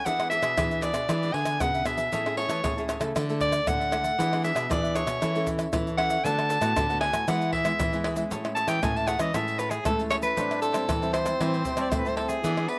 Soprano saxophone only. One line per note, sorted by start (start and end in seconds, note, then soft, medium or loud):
0.06 0.29 F#5 loud
0.30 0.84 E5 loud
0.82 1.35 D5 medium
1.34 1.62 G#5 loud
1.61 1.88 F#5 medium
1.86 2.37 E5 medium
2.37 2.86 C#5 medium
3.41 3.70 D5 loud
3.68 4.44 F#5 loud
4.44 4.73 E5 medium
4.71 4.97 D5 medium
4.95 5.47 C#5 medium
5.98 6.26 F#5 loud
6.24 7.00 A5 loud
7.01 7.30 G#5 loud
7.28 7.52 F#5 medium
7.53 8.01 E5 loud
8.55 8.70 A5 loud
8.69 8.84 G5 medium
8.83 8.98 G#5 medium
8.97 9.09 A5 loud
9.07 9.22 F#5 medium
9.20 9.36 D#5 medium
9.34 9.60 E5 loud
9.59 9.72 B4 medium
9.70 9.84 G#4 medium
9.86 10.01 A4 medium
10.10 10.17 C#5 medium
10.23 10.60 B4 medium
10.62 11.11 A4 medium
11.13 11.83 C5 medium
11.81 11.91 D5 medium
11.90 12.00 C5 medium
11.99 12.10 B4 medium
12.08 12.16 C5 medium
12.17 12.30 A4 medium
12.29 12.70 G#4 medium
12.69 12.79 B4 medium